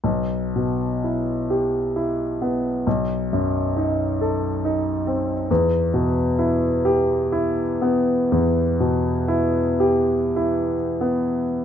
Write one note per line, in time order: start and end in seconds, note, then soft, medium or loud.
0.04 2.82 B1 soft
0.56 1.32 B2 soft
1.04 1.78 E4 soft
1.50 2.23 G4 soft
1.96 2.68 E4 soft
2.42 2.86 B3 soft
2.87 5.46 B1 soft
3.33 4.04 F#2 soft
3.77 4.47 D#4 soft
4.21 4.90 A4 soft
4.65 5.33 D#4 soft
5.07 5.50 C4 soft
5.51 8.27 E2 soft
5.94 6.65 B2 soft
6.39 7.13 E4 soft
6.85 7.61 G4 soft
7.32 8.11 E4 soft
7.82 8.60 B3 soft
8.32 11.65 E2 medium
8.80 9.59 B2 soft
9.28 10.13 E4 soft
9.80 10.74 G4 soft
10.36 11.44 E4 soft
11.01 11.65 B3 soft